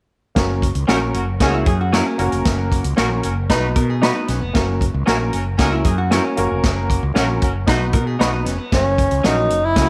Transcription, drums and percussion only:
0.36 kick, snare, closed hi-hat
0.62 kick, closed hi-hat
0.75 closed hi-hat
0.89 snare, closed hi-hat
1.14 closed hi-hat
1.40 kick, snare, closed hi-hat
1.66 kick, closed hi-hat
1.93 snare, closed hi-hat
2.19 closed hi-hat
2.32 closed hi-hat
2.45 kick, snare, closed hi-hat
2.72 kick, closed hi-hat
2.84 closed hi-hat
2.98 snare, closed hi-hat
3.23 closed hi-hat
3.50 kick, snare, closed hi-hat
3.76 kick, closed hi-hat
4.03 snare, closed hi-hat
4.28 snare, closed hi-hat
4.55 kick, snare, closed hi-hat
4.81 kick, closed hi-hat
5.07 snare, closed hi-hat
5.33 closed hi-hat
5.59 kick, snare, closed hi-hat
5.84 kick, closed hi-hat
6.11 snare, closed hi-hat
6.37 closed hi-hat
6.64 kick, snare, closed hi-hat
6.90 kick, closed hi-hat
7.16 snare, closed hi-hat
7.42 kick, closed hi-hat
7.67 kick, snare, closed hi-hat
7.93 kick, closed hi-hat
8.21 snare, closed hi-hat
8.46 snare, closed hi-hat
8.72 kick, snare, closed hi-hat
8.98 kick, closed hi-hat
9.11 closed hi-hat
9.24 snare, closed hi-hat
9.50 closed hi-hat
9.76 kick, snare, closed hi-hat

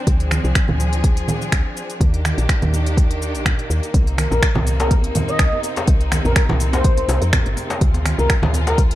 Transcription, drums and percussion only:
0.07 kick, closed hi-hat, shaker
0.20 closed hi-hat
0.31 finger snap, high conga, shaker
0.45 shaker
0.55 finger snap, kick, closed hi-hat, shaker
0.68 high conga, low conga
0.80 shaker
0.93 closed hi-hat, shaker
1.04 kick, closed hi-hat, shaker
1.17 closed hi-hat
1.28 high conga, low conga, shaker
1.42 shaker
1.52 finger snap, kick, closed hi-hat, shaker
1.77 shaker
1.90 closed hi-hat, shaker
2.01 kick, closed hi-hat, high conga, shaker
2.14 closed hi-hat
2.25 finger snap, high conga, shaker
2.38 closed hi-hat, shaker
2.49 finger snap, kick, closed hi-hat, shaker
2.62 closed hi-hat, high conga, low conga
2.73 high conga, shaker
2.86 closed hi-hat, shaker
2.97 kick, closed hi-hat, shaker
3.11 closed hi-hat
3.22 shaker
3.35 closed hi-hat, shaker
3.45 finger snap, kick, closed hi-hat, low conga, shaker
3.59 closed hi-hat
3.71 shaker
3.83 closed hi-hat, shaker
3.94 kick, closed hi-hat, djembe tone, shaker
4.07 closed hi-hat
4.18 finger snap, open hi-hat, high conga, shaker
4.32 djembe tone, shaker
4.43 finger snap, kick, closed hi-hat, shaker
4.55 djembe slap, djembe tone, high conga, low conga
4.67 open hi-hat, shaker
4.80 closed hi-hat, djembe slap, shaker
4.91 kick, closed hi-hat, djembe tone, shaker
5.04 closed hi-hat
5.15 open hi-hat, high conga, djembe tone, djembe bass, low conga, shaker
5.28 shaker
5.39 finger snap, kick, closed hi-hat, shaker
5.52 djembe tone
5.63 open hi-hat, shaker
5.76 closed hi-hat, djembe slap, djembe tone, shaker
5.87 kick, closed hi-hat, shaker
6.01 closed hi-hat
6.12 finger snap, open hi-hat, djembe tone, high conga, shaker
6.25 djembe bass, shaker
6.36 finger snap, kick, closed hi-hat, djembe tone, shaker
6.49 djembe slap, high conga, low conga
6.60 open hi-hat, shaker
6.73 closed hi-hat, djembe slap, djembe tone, djembe bass, shaker
6.84 kick, closed hi-hat, shaker
6.97 closed hi-hat, djembe tone
7.09 open hi-hat, djembe slap, shaker
7.22 closed hi-hat, shaker
7.33 finger snap, kick, closed hi-hat, djembe tone, low conga, shaker
7.46 closed hi-hat
7.57 open hi-hat, djembe tone, shaker
7.70 closed hi-hat, djembe slap, shaker
7.81 kick, closed hi-hat, shaker
7.94 closed hi-hat, djembe tone
8.05 finger snap, open hi-hat, high conga, shaker
8.19 djembe tone, shaker
8.30 finger snap, kick, closed hi-hat, shaker
8.43 djembe slap, high conga, low conga
8.54 open hi-hat, djembe tone, shaker
8.67 closed hi-hat, djembe slap, shaker
8.78 kick, closed hi-hat, djembe tone, shaker
8.91 closed hi-hat

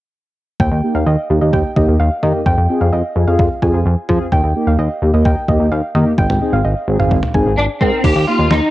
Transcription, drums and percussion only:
0.60 kick
1.53 kick
1.76 kick
2.23 mid tom
2.46 kick
3.39 kick
3.62 kick
4.09 kick, mid tom
4.32 kick
5.25 kick
5.48 kick
5.95 mid tom
6.18 kick
6.30 mid tom
7.00 mid tom
7.11 kick
7.23 mid tom
7.34 kick
7.81 kick
8.04 kick, crash
8.51 snare

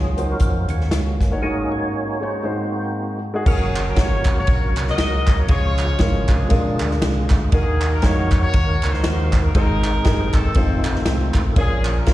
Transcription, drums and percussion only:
0.18 closed hi-hat
0.40 kick, closed hi-hat
0.69 closed hi-hat
0.81 snare
0.91 snare, closed hi-hat
1.21 kick, snare, closed hi-hat
3.46 kick, crash
3.76 clap, ride
3.96 kick, snare, ride
4.24 kick, clap, ride
4.47 kick, ride
4.76 clap, ride
4.87 snare
4.98 snare, ride
5.27 kick, snare, clap, ride
5.48 kick, ride
5.78 clap, ride
5.99 kick, snare, ride
6.28 kick, clap, ride
6.50 kick, ride
6.79 clap, ride
6.91 snare
7.02 snare, ride
7.30 kick, snare, clap, ride
7.52 kick, ride
7.81 clap, ride
8.02 kick, snare, ride
8.31 kick, clap, ride
8.53 kick, ride
8.82 clap, ride
8.93 snare
9.04 snare, ride
9.33 kick, snare, clap, ride
9.55 kick, ride
9.84 clap, ride
10.05 kick, snare, ride
10.33 kick, clap, ride
10.54 kick, ride
10.84 clap, ride
10.95 snare
11.06 snare, ride
11.34 kick, clap, ride
11.56 kick, ride
11.85 clap, ride
12.06 kick, snare, ride

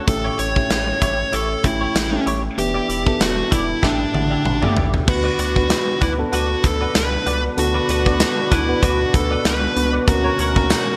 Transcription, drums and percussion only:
0.08 kick, closed hi-hat
0.39 closed hi-hat
0.56 kick
0.70 snare, closed hi-hat
1.02 kick, closed hi-hat
1.33 closed hi-hat
1.64 kick, closed hi-hat
1.96 snare, closed hi-hat
2.27 closed hi-hat
2.58 closed hi-hat
2.90 closed hi-hat
3.07 kick
3.21 snare, closed hi-hat
3.52 kick, closed hi-hat
3.83 kick, snare
4.14 high tom
4.45 mid tom
4.62 mid tom
4.77 floor tom
4.94 floor tom
5.08 kick, crash
5.39 closed hi-hat
5.56 kick
5.70 snare, closed hi-hat
6.01 kick, closed hi-hat
6.33 closed hi-hat
6.64 kick, closed hi-hat
6.95 snare, closed hi-hat
7.27 closed hi-hat
7.58 closed hi-hat
7.89 closed hi-hat
8.06 kick
8.20 snare, closed hi-hat
8.52 kick, closed hi-hat
8.83 kick, closed hi-hat
9.14 kick, closed hi-hat
9.45 snare, closed hi-hat
9.77 closed hi-hat
10.08 kick, closed hi-hat
10.39 closed hi-hat
10.56 kick
10.70 snare, closed hi-hat, tambourine

